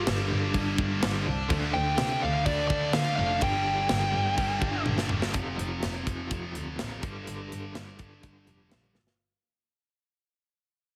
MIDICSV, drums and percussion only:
0, 0, Header, 1, 2, 480
1, 0, Start_track
1, 0, Key_signature, -2, "minor"
1, 0, Tempo, 481155
1, 1500, Time_signature, 4, 2, 24, 8
1, 10930, End_track
2, 0, Start_track
2, 0, Title_t, "Drums"
2, 69, Note_on_c, 9, 49, 70
2, 70, Note_on_c, 9, 38, 119
2, 169, Note_off_c, 9, 49, 0
2, 170, Note_off_c, 9, 38, 0
2, 543, Note_on_c, 9, 36, 85
2, 545, Note_on_c, 9, 49, 63
2, 642, Note_off_c, 9, 36, 0
2, 645, Note_off_c, 9, 49, 0
2, 782, Note_on_c, 9, 36, 97
2, 882, Note_off_c, 9, 36, 0
2, 1023, Note_on_c, 9, 49, 65
2, 1024, Note_on_c, 9, 38, 117
2, 1123, Note_off_c, 9, 49, 0
2, 1124, Note_off_c, 9, 38, 0
2, 1498, Note_on_c, 9, 49, 63
2, 1499, Note_on_c, 9, 36, 122
2, 1598, Note_off_c, 9, 36, 0
2, 1598, Note_off_c, 9, 49, 0
2, 1973, Note_on_c, 9, 49, 70
2, 1974, Note_on_c, 9, 38, 123
2, 2073, Note_off_c, 9, 49, 0
2, 2074, Note_off_c, 9, 38, 0
2, 2453, Note_on_c, 9, 49, 68
2, 2455, Note_on_c, 9, 36, 85
2, 2553, Note_off_c, 9, 49, 0
2, 2555, Note_off_c, 9, 36, 0
2, 2694, Note_on_c, 9, 36, 96
2, 2794, Note_off_c, 9, 36, 0
2, 2925, Note_on_c, 9, 49, 75
2, 2926, Note_on_c, 9, 38, 123
2, 3025, Note_off_c, 9, 49, 0
2, 3026, Note_off_c, 9, 38, 0
2, 3403, Note_on_c, 9, 49, 71
2, 3411, Note_on_c, 9, 36, 120
2, 3503, Note_off_c, 9, 49, 0
2, 3511, Note_off_c, 9, 36, 0
2, 3883, Note_on_c, 9, 49, 68
2, 3884, Note_on_c, 9, 38, 121
2, 3983, Note_off_c, 9, 49, 0
2, 3984, Note_off_c, 9, 38, 0
2, 4366, Note_on_c, 9, 49, 67
2, 4367, Note_on_c, 9, 36, 82
2, 4466, Note_off_c, 9, 49, 0
2, 4467, Note_off_c, 9, 36, 0
2, 4605, Note_on_c, 9, 36, 93
2, 4705, Note_off_c, 9, 36, 0
2, 4845, Note_on_c, 9, 48, 75
2, 4945, Note_off_c, 9, 48, 0
2, 4966, Note_on_c, 9, 38, 73
2, 5066, Note_off_c, 9, 38, 0
2, 5080, Note_on_c, 9, 45, 104
2, 5180, Note_off_c, 9, 45, 0
2, 5210, Note_on_c, 9, 38, 100
2, 5310, Note_off_c, 9, 38, 0
2, 5325, Note_on_c, 9, 42, 78
2, 5331, Note_on_c, 9, 36, 104
2, 5425, Note_off_c, 9, 42, 0
2, 5431, Note_off_c, 9, 36, 0
2, 5579, Note_on_c, 9, 42, 59
2, 5679, Note_off_c, 9, 42, 0
2, 5813, Note_on_c, 9, 42, 78
2, 5814, Note_on_c, 9, 38, 101
2, 5913, Note_off_c, 9, 42, 0
2, 5914, Note_off_c, 9, 38, 0
2, 6054, Note_on_c, 9, 36, 73
2, 6054, Note_on_c, 9, 42, 55
2, 6154, Note_off_c, 9, 36, 0
2, 6154, Note_off_c, 9, 42, 0
2, 6292, Note_on_c, 9, 42, 68
2, 6295, Note_on_c, 9, 36, 96
2, 6391, Note_off_c, 9, 42, 0
2, 6394, Note_off_c, 9, 36, 0
2, 6536, Note_on_c, 9, 42, 56
2, 6636, Note_off_c, 9, 42, 0
2, 6773, Note_on_c, 9, 42, 78
2, 6774, Note_on_c, 9, 38, 99
2, 6873, Note_off_c, 9, 42, 0
2, 6874, Note_off_c, 9, 38, 0
2, 7012, Note_on_c, 9, 42, 55
2, 7014, Note_on_c, 9, 36, 90
2, 7112, Note_off_c, 9, 42, 0
2, 7114, Note_off_c, 9, 36, 0
2, 7256, Note_on_c, 9, 42, 76
2, 7355, Note_off_c, 9, 42, 0
2, 7503, Note_on_c, 9, 42, 56
2, 7603, Note_off_c, 9, 42, 0
2, 7734, Note_on_c, 9, 42, 72
2, 7735, Note_on_c, 9, 38, 94
2, 7834, Note_off_c, 9, 42, 0
2, 7835, Note_off_c, 9, 38, 0
2, 7970, Note_on_c, 9, 42, 53
2, 7975, Note_on_c, 9, 36, 65
2, 8069, Note_off_c, 9, 42, 0
2, 8075, Note_off_c, 9, 36, 0
2, 8213, Note_on_c, 9, 42, 64
2, 8215, Note_on_c, 9, 36, 84
2, 8313, Note_off_c, 9, 42, 0
2, 8315, Note_off_c, 9, 36, 0
2, 8452, Note_on_c, 9, 42, 55
2, 8551, Note_off_c, 9, 42, 0
2, 8694, Note_on_c, 9, 42, 70
2, 8695, Note_on_c, 9, 38, 94
2, 8794, Note_off_c, 9, 42, 0
2, 8795, Note_off_c, 9, 38, 0
2, 8928, Note_on_c, 9, 38, 51
2, 9028, Note_off_c, 9, 38, 0
2, 9047, Note_on_c, 9, 38, 67
2, 9146, Note_off_c, 9, 38, 0
2, 10930, End_track
0, 0, End_of_file